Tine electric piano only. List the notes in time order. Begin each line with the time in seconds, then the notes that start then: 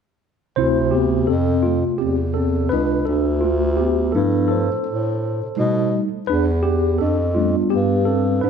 0.56 C3 C4 E4 C5
0.91 B3 G4
1.27 C4 A4
1.63 A3 F4
1.98 C4 G4
2.34 C4 A4
2.69 D4 B4
3.05 D4 A4
3.41 A3 F4
3.77 B3 G4
4.12 F3 A3 B3 D4 E4 A4
4.48 A4 C5
5.57 G3 A3 D#4
6.27 D4 B4
6.63 B3 G4
6.98 D4 A4
7.35 G3 A3 B3 D4 F4
7.70 B3 G4
8.05 C4 A4
8.41 D4 B4